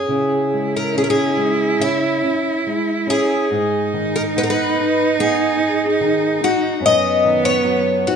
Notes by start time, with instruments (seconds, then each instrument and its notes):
Already playing: twelve-string acoustic guitar G#4
0.08 nylon-string guitar C#3, cello E4
0.53 nylon-string guitar G#3
0.77 twelve-string acoustic guitar A#4
0.95 nylon-string guitar C#4, twelve-string acoustic guitar G#4
1.04 twelve-string acoustic guitar A#4
1.10 twelve-string acoustic guitar G#4
1.37 nylon-string guitar G#3
1.79 nylon-string guitar C#3, twelve-string acoustic guitar E4
2.22 nylon-string guitar C#4
2.67 nylon-string guitar G#3
3.07 nylon-string guitar C#4, twelve-string acoustic guitar G#4
3.50 nylon-string guitar G#2, cello D#4
3.94 nylon-string guitar D#3
4.16 twelve-string acoustic guitar A#4
4.36 nylon-string guitar B3, twelve-string acoustic guitar B4
4.43 twelve-string acoustic guitar A#4
4.50 twelve-string acoustic guitar B4
4.78 nylon-string guitar D#4
5.19 nylon-string guitar B3, twelve-string acoustic guitar G#4
5.60 nylon-string guitar D#4
6.01 nylon-string guitar D#3
6.41 nylon-string guitar D#4, twelve-string acoustic guitar F#4
6.80 nylon-string guitar F#2, cello B3
6.86 twelve-string acoustic guitar D#5
7.24 nylon-string guitar D#3
7.45 twelve-string acoustic guitar C#5
7.65 nylon-string guitar F#3
8.07 nylon-string guitar D#4, twelve-string acoustic guitar F#4